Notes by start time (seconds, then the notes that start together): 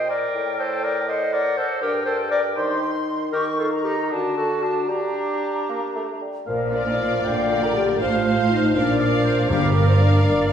Already playing: A#2 D#5 G5
0.10 A#4 D5
0.35 A2
0.58 A4 C5
0.83 A#4 D5
1.08 C5 D#5 F#5
1.33 A#4 D5
1.57 A4 C5
1.81 G2 G4 A#4 G5
2.05 A4 C5
2.31 A#4 D5
2.56 D#3 G4 C5 C6
3.32 D#3 G4 A#4 C#6
3.59 F4 A4
3.72 A#5
3.84 D#4 G4
4.10 D3 D4 F#4 A5
4.36 F#4 A4
4.62 D4 F#4
4.88 G3 D4 G4 A#5
5.69 A#3
5.95 A3
6.21 G3
6.47 A#1 A#2 F3 A#3 A#4 D5 F5
6.73 D4 A#4 D5
6.87 D#4 D#5
6.99 F4 F5
7.24 A#1 A#2 D3 F4 F5 G5
7.50 A#4 D5
7.63 A#4 A#5
7.75 G4 G5
8.00 A1 A2 F3 F4 C5 F5
8.26 C5 F5
8.51 D#4 D#5
8.75 A#1 A#2 F3 D4 A#4 D5 F5
9.00 A#4 D5 F5
9.24 C5
9.49 G1 G2 G3 A#3 G4 A#4 D5 F5
9.75 A#3 A#4 D5 F5
9.88 C4 C5
9.99 D4 D5
10.24 G1 G2 D4 D5
10.49 A#4 D5 F5